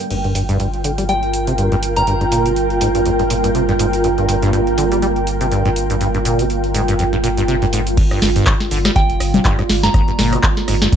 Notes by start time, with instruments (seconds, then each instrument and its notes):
Already playing: ambient pad G5
0.00 cabasa
0.10 sub bass G1, acid bass G2, ambient pad D3 G3 A#3 F4, closed hi-hat, crash, cabasa
0.24 acid bass G2, closed hi-hat
0.30 ambient pad G5
0.35 acid bass G2, closed hi-hat, cabasa
0.49 acid bass G2, closed hi-hat, cabasa
0.60 acid bass G2, closed hi-hat, cabasa
0.73 ambient pad A#4, closed hi-hat
0.84 acid bass D3, closed hi-hat, cabasa
0.98 acid bass G3, closed hi-hat, cabasa
1.09 acid bass G3, synth bell G5, closed hi-hat, cabasa
1.23 closed hi-hat
1.33 closed hi-hat, cabasa
1.47 acid bass C3, closed hi-hat, cabasa
1.58 acid bass G2, closed hi-hat, cabasa
1.72 acid bass G2, closed hi-hat
1.83 closed hi-hat, cabasa
1.96 acid bass G2, synth bell A#5, closed hi-hat, cabasa
2.07 acid bass G2, closed hi-hat, cabasa
2.21 acid bass G2, closed hi-hat
2.32 acid bass A#2, closed hi-hat, cabasa
2.46 acid bass C3, closed hi-hat, cabasa
2.56 closed hi-hat, cabasa
2.70 closed hi-hat
2.81 acid bass G#2, closed hi-hat, cabasa
2.95 acid bass G2, closed hi-hat, cabasa
3.06 acid bass F2, closed hi-hat, cabasa
3.19 acid bass G2, closed hi-hat
3.30 acid bass A#2, closed hi-hat, cabasa
3.44 acid bass G2, closed hi-hat, cabasa
3.55 acid bass C3, closed hi-hat, cabasa
3.69 acid bass G2, closed hi-hat
3.79 acid bass G#2, closed hi-hat, cabasa
3.93 closed hi-hat, cabasa
4.04 acid bass G2, closed hi-hat, cabasa
4.18 acid bass G2, closed hi-hat
4.29 acid bass G2, closed hi-hat, cabasa
4.42 acid bass G2, closed hi-hat, cabasa
4.53 acid bass G2, closed hi-hat, cabasa
4.67 closed hi-hat
4.78 acid bass D3, closed hi-hat, cabasa
4.92 acid bass G3, closed hi-hat, cabasa
5.02 acid bass G3, closed hi-hat, cabasa
5.16 closed hi-hat
5.27 closed hi-hat, cabasa
5.41 acid bass C3, closed hi-hat, cabasa
5.51 acid bass G2, closed hi-hat, cabasa
5.65 acid bass G2, closed hi-hat
5.76 closed hi-hat, cabasa
5.90 acid bass G2, closed hi-hat, cabasa
6.01 acid bass G2, closed hi-hat, cabasa
6.15 acid bass G2, closed hi-hat
6.25 acid bass A#2, closed hi-hat, cabasa
6.39 acid bass C3, closed hi-hat, cabasa
6.50 closed hi-hat, cabasa
6.64 closed hi-hat
6.74 acid bass G#2, closed hi-hat, cabasa
6.88 acid bass G2, closed hi-hat, cabasa
6.99 acid bass F2, closed hi-hat, cabasa
7.13 acid bass G2, closed hi-hat
7.24 acid bass A#2, closed hi-hat, cabasa
7.37 acid bass G2, closed hi-hat, cabasa
7.48 acid bass C3, closed hi-hat, cabasa
7.62 acid bass G2, closed hi-hat
7.73 acid bass G#2, closed hi-hat, cabasa
7.87 closed hi-hat, cabasa
7.97 acid bass G2, ambient pad D3 G3 A#3 F4, kick, closed hi-hat, crash, cabasa
8.11 acid bass G2, cross-stick, closed hi-hat
8.22 sub bass G1, acid bass G2, snare, open hi-hat, cabasa
8.36 acid bass G2, closed hi-hat, cabasa
8.47 kick, cross-stick, clap, closed hi-hat, cabasa
8.60 snare, closed hi-hat
8.71 sub bass G1, acid bass D3, open hi-hat, cabasa
8.85 acid bass G3, cross-stick, snare, closed hi-hat, cabasa
8.96 acid bass G3, synth bell G5, kick, closed hi-hat, cabasa
9.10 sub bass F1, closed hi-hat
9.20 sub bass G1, cross-stick, open hi-hat, cabasa
9.34 acid bass C3, closed hi-hat, low conga, cabasa
9.45 acid bass G2, kick, clap, closed hi-hat, cabasa
9.59 acid bass G2, cross-stick, closed hi-hat
9.69 sub bass G1, snare, open hi-hat, cabasa
9.83 acid bass G2, synth bell A#5, snare, closed hi-hat, cabasa
9.94 acid bass G2, kick, cross-stick, closed hi-hat, cabasa
10.08 acid bass G2, closed hi-hat
10.19 sub bass G1, acid bass A#2, snare, open hi-hat, cabasa
10.33 acid bass C3, cross-stick, closed hi-hat, cabasa
10.43 kick, clap, closed hi-hat, cabasa
10.57 snare, closed hi-hat
10.68 sub bass G1, acid bass G#2, cross-stick, open hi-hat, cabasa
10.82 acid bass G2, snare, closed hi-hat, cabasa
10.92 acid bass F2, kick, closed hi-hat